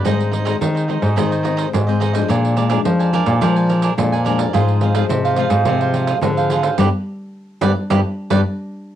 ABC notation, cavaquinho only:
X:1
M:4/4
L:1/16
Q:1/4=107
K:Ablyd
V:1 name="Cavaquinho"
[EAce]2 [EAce] [EAce] z [Ace] [EAce]2 [EAce] [Ace] [EAce] [EAce] z [Ace] [EAce] [Ace] | [DBda]2 [DBda] [DBda] z [Bda] [DBda]2 [DBda] [Bda] [DBda] [DBda] z [Bda] [DBda] [Bda] | [FAcf]2 [FAcf] [FAcf] z [Acf] [FAcf]2 [FAcf] [Acf] [FAcf] [FAcf] z [Acf] [FAcf] [Acf] | [G=Bd] z4 z [GBd] z [GBd] z2 [GBd] z4 |]